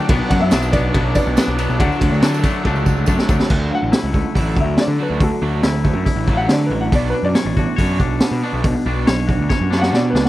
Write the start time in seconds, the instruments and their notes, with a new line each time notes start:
Already playing: clean electric guitar F#3 D4, tine electric piano D5, upright piano G5
0.09 picked electric bass B1, clean electric guitar B2, overdriven electric guitar F#3 B3 D4, kick, ride, tambourine
0.28 picked electric bass F#2, tine electric piano D5, upright piano F#5, kick, ride
0.40 picked electric bass F#2, tine electric piano C#5, upright piano E5
0.50 picked electric bass B1, clean electric guitar B2, overdriven electric guitar F#3 B3 D4, snare, ride, tambourine
0.62 tambourine
0.72 clean electric guitar B2, overdriven electric guitar F#3 B3 D4, tine electric piano B4, upright piano D5, kick, ride, tambourine
0.93 picked electric bass B1, clean electric guitar B2, overdriven electric guitar F#3 B3 D4, kick, ride
1.14 tine electric piano B4, upright piano D5, kick, ride, tambourine
1.26 picked electric bass B1, tambourine
1.36 clean electric guitar B2, overdriven electric guitar F#3 B3 D4, snare, ride, tambourine
1.48 picked electric bass B1
1.56 clean electric guitar B2, overdriven electric guitar F#3 B3 D4, ride, tambourine
1.70 picked electric bass B1, tambourine
1.78 picked electric bass D2, clean electric guitar D3, overdriven electric guitar F#3 A3 D4, tine electric piano D5, upright piano F#5, kick, ride
1.92 tambourine
2.01 picked electric bass D2, kick, ride, tambourine
2.12 picked electric bass D2, tambourine
2.20 clean electric guitar D3, picked electric bass D3, overdriven electric guitar F#3 A3 D4, snare, ride, tambourine
2.34 tambourine
2.41 clean electric guitar D3, overdriven electric guitar F#3 A3 D4, kick, ride, tambourine
2.63 picked electric bass C#2, clean electric guitar D3, overdriven electric guitar F#3 A3 D4, kick, tambourine
2.76 tambourine
2.86 kick, tambourine
3.06 picked electric bass F#2, clean electric guitar D3, overdriven electric guitar F#3 A3 D4, kick, tambourine
3.19 snare
3.28 picked electric bass D2, clean electric guitar D3, overdriven electric guitar F#3 A3 D4, kick, tambourine
3.40 snare
3.48 picked electric bass D2, clean electric guitar D3, overdriven electric guitar A3 D4 F#4, kick, crash
3.70 clean electric guitar F#3, overdriven electric guitar A3 D4, upright piano F5
3.75 upright piano F#5
3.83 picked electric bass A1
3.92 overdriven electric guitar A3 D4, clean electric guitar E4, snare, open hi-hat
4.04 picked electric bass C#2
4.14 overdriven electric guitar A3 D4, kick
4.35 picked electric bass A1, overdriven electric guitar A3 D4 F#4, clean electric guitar E4, kick, open hi-hat
4.57 picked electric bass D2, clean electric guitar F#3, overdriven electric guitar A3 D4, upright piano E5, kick
4.77 clean electric guitar D3, overdriven electric guitar A3 D4, upright piano D5, snare, open hi-hat
4.88 picked electric bass D3
4.99 clean electric guitar F#3, overdriven electric guitar A3 D4 F#4, upright piano B4
5.10 picked electric bass D2
5.20 clean electric guitar D3, overdriven electric guitar A3 D4, upright piano F#4 A4, kick, open hi-hat
5.42 picked electric bass D2, clean electric guitar F#3, overdriven electric guitar A3 D4 F#4
5.63 picked electric bass D2, overdriven electric guitar A3 D4, clean electric guitar E4, snare, open hi-hat
5.85 overdriven electric guitar A3 D4, kick
5.95 picked electric bass F#2
6.05 overdriven electric guitar A3 D4, clean electric guitar E4, kick, open hi-hat
6.16 picked electric bass A1
6.28 clean electric guitar F#3, overdriven electric guitar A3 D4 F#4, kick
6.34 upright piano F5 F#5
6.48 picked electric bass D3, clean electric guitar D3, overdriven electric guitar A3 D4, upright piano D5, snare, open hi-hat
6.66 picked electric bass A1, upright piano B4
6.71 clean electric guitar F#3, overdriven electric guitar A3 D4
6.81 upright piano F#5
6.92 picked electric bass B1, clean electric guitar B2, overdriven electric guitar B3 D4 F#4, upright piano D5, kick, open hi-hat
7.10 upright piano B4
7.15 overdriven electric guitar B3 D4
7.23 picked electric bass F#2, upright piano D5
7.35 overdriven electric guitar B3 D4, clean electric guitar C#5, snare, open hi-hat
7.46 picked electric bass A1
7.57 overdriven electric guitar B3 D4, clean electric guitar F#4, kick
7.76 picked electric bass F#2, overdriven electric guitar B3 D4 F#4, clean electric guitar C#5, kick, open hi-hat
8.00 picked electric bass B1, overdriven electric guitar B3 D4, kick
8.20 overdriven electric guitar B3 D4, snare, open hi-hat
8.31 picked electric bass B2
8.43 overdriven electric guitar B3 D4 F#4
8.53 picked electric bass B1
8.64 clean electric guitar B2, overdriven electric guitar B3 D4, kick, open hi-hat
8.86 picked electric bass B1, overdriven electric guitar B3 D4 F#4
9.07 picked electric bass B1, overdriven electric guitar B3 D4, clean electric guitar C#5, snare, open hi-hat
9.27 overdriven electric guitar B3 D4, clean electric guitar F#4, kick
9.39 picked electric bass D2
9.49 overdriven electric guitar B3 D4, clean electric guitar C#5, kick, snare
9.61 picked electric bass F#2
9.72 overdriven electric guitar B3 D4 F#4, snare
9.77 upright piano F5
9.81 upright piano F#5, snare
9.93 picked electric bass B2, overdriven electric guitar B3 D4, upright piano D5, snare
10.10 picked electric bass C#2, upright piano B4
10.15 overdriven electric guitar B3 D4, snare
10.25 upright piano F#5, snare